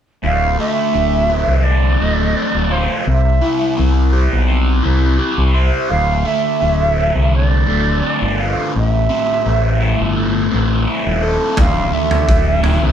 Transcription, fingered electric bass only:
0, 0, Header, 1, 2, 480
1, 0, Start_track
1, 0, Key_signature, -1, "minor"
1, 0, Tempo, 708299
1, 161, Time_signature, 4, 2, 24, 8
1, 8756, End_track
2, 0, Start_track
2, 0, Title_t, "Fingered electric bass"
2, 0, Program_c, 0, 33
2, 162, Note_on_c, 0, 26, 90
2, 378, Note_off_c, 0, 26, 0
2, 644, Note_on_c, 0, 26, 78
2, 967, Note_off_c, 0, 26, 0
2, 999, Note_on_c, 0, 36, 72
2, 1324, Note_off_c, 0, 36, 0
2, 1362, Note_on_c, 0, 26, 80
2, 1578, Note_off_c, 0, 26, 0
2, 1725, Note_on_c, 0, 26, 82
2, 1939, Note_off_c, 0, 26, 0
2, 2083, Note_on_c, 0, 36, 87
2, 2298, Note_off_c, 0, 36, 0
2, 2570, Note_on_c, 0, 36, 85
2, 2890, Note_off_c, 0, 36, 0
2, 2933, Note_on_c, 0, 35, 73
2, 3252, Note_off_c, 0, 35, 0
2, 3290, Note_on_c, 0, 36, 81
2, 3502, Note_off_c, 0, 36, 0
2, 3645, Note_on_c, 0, 36, 82
2, 3859, Note_off_c, 0, 36, 0
2, 4006, Note_on_c, 0, 26, 86
2, 4220, Note_off_c, 0, 26, 0
2, 4488, Note_on_c, 0, 26, 78
2, 4809, Note_off_c, 0, 26, 0
2, 4847, Note_on_c, 0, 36, 76
2, 5168, Note_off_c, 0, 36, 0
2, 5209, Note_on_c, 0, 26, 79
2, 5421, Note_off_c, 0, 26, 0
2, 5571, Note_on_c, 0, 31, 84
2, 5783, Note_off_c, 0, 31, 0
2, 5937, Note_on_c, 0, 33, 90
2, 6146, Note_off_c, 0, 33, 0
2, 6413, Note_on_c, 0, 33, 79
2, 6732, Note_off_c, 0, 33, 0
2, 6781, Note_on_c, 0, 31, 73
2, 7096, Note_off_c, 0, 31, 0
2, 7143, Note_on_c, 0, 33, 78
2, 7349, Note_off_c, 0, 33, 0
2, 7499, Note_on_c, 0, 27, 86
2, 7707, Note_off_c, 0, 27, 0
2, 7850, Note_on_c, 0, 26, 82
2, 8062, Note_off_c, 0, 26, 0
2, 8328, Note_on_c, 0, 26, 83
2, 8649, Note_off_c, 0, 26, 0
2, 8690, Note_on_c, 0, 36, 76
2, 8756, Note_off_c, 0, 36, 0
2, 8756, End_track
0, 0, End_of_file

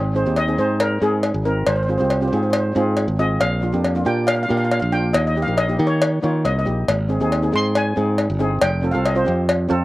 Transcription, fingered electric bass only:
0, 0, Header, 1, 2, 480
1, 0, Start_track
1, 0, Key_signature, -4, "major"
1, 0, Tempo, 434153
1, 1851, Time_signature, 4, 2, 24, 8
1, 10885, End_track
2, 0, Start_track
2, 0, Title_t, "Fingered electric bass"
2, 0, Program_c, 0, 33
2, 0, Note_on_c, 0, 32, 91
2, 256, Note_off_c, 0, 32, 0
2, 290, Note_on_c, 0, 39, 73
2, 612, Note_off_c, 0, 39, 0
2, 644, Note_on_c, 0, 44, 82
2, 1077, Note_off_c, 0, 44, 0
2, 1123, Note_on_c, 0, 44, 83
2, 1451, Note_off_c, 0, 44, 0
2, 1484, Note_on_c, 0, 32, 82
2, 1809, Note_off_c, 0, 32, 0
2, 1844, Note_on_c, 0, 32, 94
2, 2172, Note_off_c, 0, 32, 0
2, 2217, Note_on_c, 0, 36, 77
2, 2536, Note_off_c, 0, 36, 0
2, 2573, Note_on_c, 0, 44, 80
2, 3003, Note_off_c, 0, 44, 0
2, 3049, Note_on_c, 0, 44, 89
2, 3376, Note_off_c, 0, 44, 0
2, 3403, Note_on_c, 0, 32, 89
2, 3729, Note_off_c, 0, 32, 0
2, 3774, Note_on_c, 0, 34, 96
2, 4098, Note_off_c, 0, 34, 0
2, 4131, Note_on_c, 0, 41, 75
2, 4454, Note_off_c, 0, 41, 0
2, 4487, Note_on_c, 0, 46, 84
2, 4921, Note_off_c, 0, 46, 0
2, 4979, Note_on_c, 0, 46, 90
2, 5301, Note_off_c, 0, 46, 0
2, 5331, Note_on_c, 0, 34, 88
2, 5654, Note_off_c, 0, 34, 0
2, 5683, Note_on_c, 0, 39, 98
2, 6012, Note_off_c, 0, 39, 0
2, 6056, Note_on_c, 0, 34, 79
2, 6377, Note_off_c, 0, 34, 0
2, 6404, Note_on_c, 0, 51, 88
2, 6839, Note_off_c, 0, 51, 0
2, 6895, Note_on_c, 0, 51, 90
2, 7110, Note_off_c, 0, 51, 0
2, 7129, Note_on_c, 0, 36, 92
2, 7347, Note_off_c, 0, 36, 0
2, 7373, Note_on_c, 0, 34, 78
2, 7589, Note_off_c, 0, 34, 0
2, 7609, Note_on_c, 0, 32, 93
2, 7935, Note_off_c, 0, 32, 0
2, 7969, Note_on_c, 0, 39, 77
2, 8293, Note_off_c, 0, 39, 0
2, 8329, Note_on_c, 0, 44, 82
2, 8761, Note_off_c, 0, 44, 0
2, 8813, Note_on_c, 0, 44, 82
2, 9137, Note_off_c, 0, 44, 0
2, 9174, Note_on_c, 0, 31, 89
2, 9495, Note_off_c, 0, 31, 0
2, 9530, Note_on_c, 0, 29, 99
2, 9855, Note_off_c, 0, 29, 0
2, 9892, Note_on_c, 0, 36, 76
2, 10214, Note_off_c, 0, 36, 0
2, 10257, Note_on_c, 0, 41, 84
2, 10684, Note_off_c, 0, 41, 0
2, 10729, Note_on_c, 0, 41, 93
2, 10885, Note_off_c, 0, 41, 0
2, 10885, End_track
0, 0, End_of_file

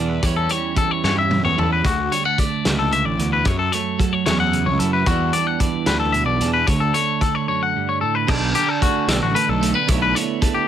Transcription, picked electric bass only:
0, 0, Header, 1, 2, 480
1, 0, Start_track
1, 0, Key_signature, 2, "major"
1, 0, Tempo, 536193
1, 210, Time_signature, 6, 3, 24, 8
1, 9560, End_track
2, 0, Start_track
2, 0, Title_t, "Picked electric bass"
2, 0, Program_c, 0, 34
2, 0, Note_on_c, 0, 40, 75
2, 173, Note_off_c, 0, 40, 0
2, 205, Note_on_c, 0, 40, 89
2, 416, Note_off_c, 0, 40, 0
2, 929, Note_on_c, 0, 43, 86
2, 1280, Note_off_c, 0, 43, 0
2, 1280, Note_on_c, 0, 40, 78
2, 1389, Note_off_c, 0, 40, 0
2, 1415, Note_on_c, 0, 40, 78
2, 1621, Note_off_c, 0, 40, 0
2, 1651, Note_on_c, 0, 38, 99
2, 1859, Note_off_c, 0, 38, 0
2, 2379, Note_on_c, 0, 37, 83
2, 2729, Note_off_c, 0, 37, 0
2, 2729, Note_on_c, 0, 33, 80
2, 2834, Note_off_c, 0, 33, 0
2, 2857, Note_on_c, 0, 38, 77
2, 3063, Note_off_c, 0, 38, 0
2, 3097, Note_on_c, 0, 42, 91
2, 3303, Note_off_c, 0, 42, 0
2, 3823, Note_on_c, 0, 40, 89
2, 4173, Note_on_c, 0, 37, 86
2, 4186, Note_off_c, 0, 40, 0
2, 4277, Note_off_c, 0, 37, 0
2, 4301, Note_on_c, 0, 42, 77
2, 4506, Note_off_c, 0, 42, 0
2, 4535, Note_on_c, 0, 40, 88
2, 4742, Note_off_c, 0, 40, 0
2, 5254, Note_on_c, 0, 38, 90
2, 5612, Note_off_c, 0, 38, 0
2, 5612, Note_on_c, 0, 35, 76
2, 5716, Note_off_c, 0, 35, 0
2, 5731, Note_on_c, 0, 40, 78
2, 5940, Note_off_c, 0, 40, 0
2, 5977, Note_on_c, 0, 38, 88
2, 6183, Note_off_c, 0, 38, 0
2, 7418, Note_on_c, 0, 35, 101
2, 7623, Note_off_c, 0, 35, 0
2, 8126, Note_on_c, 0, 35, 90
2, 8232, Note_off_c, 0, 35, 0
2, 8260, Note_on_c, 0, 33, 92
2, 8360, Note_off_c, 0, 33, 0
2, 8493, Note_on_c, 0, 35, 93
2, 8699, Note_off_c, 0, 35, 0
2, 8856, Note_on_c, 0, 35, 96
2, 9061, Note_off_c, 0, 35, 0
2, 9560, End_track
0, 0, End_of_file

